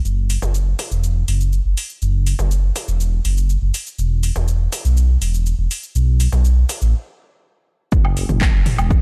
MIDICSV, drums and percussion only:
0, 0, Header, 1, 2, 480
1, 0, Start_track
1, 0, Tempo, 491803
1, 52, Time_signature, 4, 2, 24, 8
1, 8802, End_track
2, 0, Start_track
2, 0, Title_t, "Drums"
2, 52, Note_on_c, 9, 82, 51
2, 149, Note_off_c, 9, 82, 0
2, 291, Note_on_c, 9, 46, 103
2, 291, Note_on_c, 9, 82, 71
2, 389, Note_off_c, 9, 46, 0
2, 389, Note_off_c, 9, 82, 0
2, 413, Note_on_c, 9, 45, 80
2, 413, Note_on_c, 9, 82, 52
2, 511, Note_off_c, 9, 45, 0
2, 511, Note_off_c, 9, 82, 0
2, 532, Note_on_c, 9, 82, 50
2, 629, Note_off_c, 9, 82, 0
2, 771, Note_on_c, 9, 45, 81
2, 771, Note_on_c, 9, 46, 99
2, 771, Note_on_c, 9, 82, 72
2, 869, Note_off_c, 9, 45, 0
2, 869, Note_off_c, 9, 46, 0
2, 869, Note_off_c, 9, 82, 0
2, 894, Note_on_c, 9, 82, 51
2, 991, Note_off_c, 9, 82, 0
2, 1012, Note_on_c, 9, 82, 51
2, 1109, Note_off_c, 9, 82, 0
2, 1251, Note_on_c, 9, 46, 102
2, 1251, Note_on_c, 9, 82, 72
2, 1349, Note_off_c, 9, 46, 0
2, 1349, Note_off_c, 9, 82, 0
2, 1373, Note_on_c, 9, 82, 52
2, 1470, Note_off_c, 9, 82, 0
2, 1491, Note_on_c, 9, 82, 51
2, 1589, Note_off_c, 9, 82, 0
2, 1731, Note_on_c, 9, 46, 102
2, 1731, Note_on_c, 9, 82, 72
2, 1829, Note_off_c, 9, 46, 0
2, 1829, Note_off_c, 9, 82, 0
2, 1853, Note_on_c, 9, 82, 51
2, 1951, Note_off_c, 9, 82, 0
2, 1971, Note_on_c, 9, 82, 54
2, 2069, Note_off_c, 9, 82, 0
2, 2211, Note_on_c, 9, 46, 96
2, 2211, Note_on_c, 9, 82, 75
2, 2309, Note_off_c, 9, 46, 0
2, 2309, Note_off_c, 9, 82, 0
2, 2333, Note_on_c, 9, 45, 79
2, 2333, Note_on_c, 9, 82, 54
2, 2430, Note_off_c, 9, 45, 0
2, 2430, Note_off_c, 9, 82, 0
2, 2452, Note_on_c, 9, 82, 51
2, 2549, Note_off_c, 9, 82, 0
2, 2691, Note_on_c, 9, 45, 81
2, 2691, Note_on_c, 9, 46, 99
2, 2691, Note_on_c, 9, 82, 78
2, 2789, Note_off_c, 9, 45, 0
2, 2789, Note_off_c, 9, 46, 0
2, 2789, Note_off_c, 9, 82, 0
2, 2814, Note_on_c, 9, 82, 55
2, 2911, Note_off_c, 9, 82, 0
2, 2932, Note_on_c, 9, 82, 53
2, 3029, Note_off_c, 9, 82, 0
2, 3171, Note_on_c, 9, 46, 96
2, 3171, Note_on_c, 9, 82, 77
2, 3269, Note_off_c, 9, 46, 0
2, 3269, Note_off_c, 9, 82, 0
2, 3294, Note_on_c, 9, 82, 53
2, 3391, Note_off_c, 9, 82, 0
2, 3412, Note_on_c, 9, 82, 54
2, 3510, Note_off_c, 9, 82, 0
2, 3652, Note_on_c, 9, 46, 96
2, 3652, Note_on_c, 9, 82, 77
2, 3750, Note_off_c, 9, 46, 0
2, 3750, Note_off_c, 9, 82, 0
2, 3773, Note_on_c, 9, 82, 54
2, 3871, Note_off_c, 9, 82, 0
2, 3891, Note_on_c, 9, 82, 59
2, 3989, Note_off_c, 9, 82, 0
2, 4131, Note_on_c, 9, 46, 100
2, 4131, Note_on_c, 9, 82, 82
2, 4229, Note_off_c, 9, 46, 0
2, 4229, Note_off_c, 9, 82, 0
2, 4254, Note_on_c, 9, 45, 82
2, 4254, Note_on_c, 9, 82, 59
2, 4351, Note_off_c, 9, 45, 0
2, 4351, Note_off_c, 9, 82, 0
2, 4371, Note_on_c, 9, 82, 56
2, 4469, Note_off_c, 9, 82, 0
2, 4611, Note_on_c, 9, 45, 80
2, 4611, Note_on_c, 9, 46, 97
2, 4611, Note_on_c, 9, 82, 81
2, 4709, Note_off_c, 9, 45, 0
2, 4709, Note_off_c, 9, 46, 0
2, 4709, Note_off_c, 9, 82, 0
2, 4733, Note_on_c, 9, 82, 53
2, 4831, Note_off_c, 9, 82, 0
2, 4852, Note_on_c, 9, 82, 56
2, 4949, Note_off_c, 9, 82, 0
2, 5092, Note_on_c, 9, 46, 98
2, 5092, Note_on_c, 9, 82, 79
2, 5189, Note_off_c, 9, 46, 0
2, 5189, Note_off_c, 9, 82, 0
2, 5214, Note_on_c, 9, 82, 58
2, 5311, Note_off_c, 9, 82, 0
2, 5332, Note_on_c, 9, 82, 57
2, 5430, Note_off_c, 9, 82, 0
2, 5572, Note_on_c, 9, 46, 99
2, 5572, Note_on_c, 9, 82, 80
2, 5670, Note_off_c, 9, 46, 0
2, 5670, Note_off_c, 9, 82, 0
2, 5694, Note_on_c, 9, 82, 59
2, 5791, Note_off_c, 9, 82, 0
2, 5812, Note_on_c, 9, 82, 57
2, 5910, Note_off_c, 9, 82, 0
2, 6052, Note_on_c, 9, 46, 104
2, 6052, Note_on_c, 9, 82, 81
2, 6149, Note_off_c, 9, 46, 0
2, 6149, Note_off_c, 9, 82, 0
2, 6173, Note_on_c, 9, 45, 75
2, 6173, Note_on_c, 9, 82, 58
2, 6271, Note_off_c, 9, 45, 0
2, 6271, Note_off_c, 9, 82, 0
2, 6292, Note_on_c, 9, 82, 58
2, 6389, Note_off_c, 9, 82, 0
2, 6532, Note_on_c, 9, 45, 80
2, 6532, Note_on_c, 9, 46, 102
2, 6532, Note_on_c, 9, 82, 85
2, 6630, Note_off_c, 9, 45, 0
2, 6630, Note_off_c, 9, 46, 0
2, 6630, Note_off_c, 9, 82, 0
2, 6654, Note_on_c, 9, 82, 56
2, 6751, Note_off_c, 9, 82, 0
2, 7731, Note_on_c, 9, 82, 58
2, 7732, Note_on_c, 9, 36, 125
2, 7829, Note_off_c, 9, 36, 0
2, 7829, Note_off_c, 9, 82, 0
2, 7853, Note_on_c, 9, 77, 50
2, 7951, Note_off_c, 9, 77, 0
2, 7971, Note_on_c, 9, 46, 105
2, 7971, Note_on_c, 9, 82, 82
2, 8069, Note_off_c, 9, 46, 0
2, 8069, Note_off_c, 9, 82, 0
2, 8093, Note_on_c, 9, 45, 75
2, 8093, Note_on_c, 9, 82, 59
2, 8191, Note_off_c, 9, 45, 0
2, 8191, Note_off_c, 9, 82, 0
2, 8211, Note_on_c, 9, 39, 124
2, 8211, Note_on_c, 9, 77, 47
2, 8211, Note_on_c, 9, 82, 56
2, 8212, Note_on_c, 9, 36, 117
2, 8309, Note_off_c, 9, 36, 0
2, 8309, Note_off_c, 9, 39, 0
2, 8309, Note_off_c, 9, 77, 0
2, 8309, Note_off_c, 9, 82, 0
2, 8451, Note_on_c, 9, 45, 74
2, 8451, Note_on_c, 9, 46, 104
2, 8451, Note_on_c, 9, 82, 80
2, 8549, Note_off_c, 9, 45, 0
2, 8549, Note_off_c, 9, 46, 0
2, 8549, Note_off_c, 9, 82, 0
2, 8574, Note_on_c, 9, 77, 50
2, 8574, Note_on_c, 9, 82, 57
2, 8672, Note_off_c, 9, 77, 0
2, 8672, Note_off_c, 9, 82, 0
2, 8692, Note_on_c, 9, 36, 118
2, 8692, Note_on_c, 9, 82, 54
2, 8790, Note_off_c, 9, 36, 0
2, 8790, Note_off_c, 9, 82, 0
2, 8802, End_track
0, 0, End_of_file